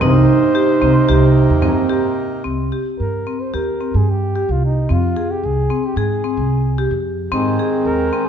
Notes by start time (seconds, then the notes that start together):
0.01 C2 C3 A#3 C4 D#4 C5, frame drum
0.28 frame drum
0.55 G4
0.81 C2 C4, frame drum
1.09 C2 G4
1.36 frame drum
1.50 D#2
1.62 C4, frame drum
1.90 G4
2.16 frame drum
2.45 C2 C4
2.72 G4
3.00 G2 A#4
3.27 C4
3.41 C5
3.54 D#2 G4 A#4
3.81 C4
3.94 G2 G#4
4.11 G4
4.35 G4
4.49 C2 F4
4.65 D#4
4.89 F2 C4 F4
5.17 G#4
5.31 G4
5.43 C2 G#4
5.70 C4
5.86 G4
5.96 G#2 G#4
6.24 C4
6.37 C2
6.78 G4
6.91 F2
7.32 G#2 D#3 G#3 C4
7.59 G#4
7.85 D#2 A#4
8.13 C4
8.26 G#4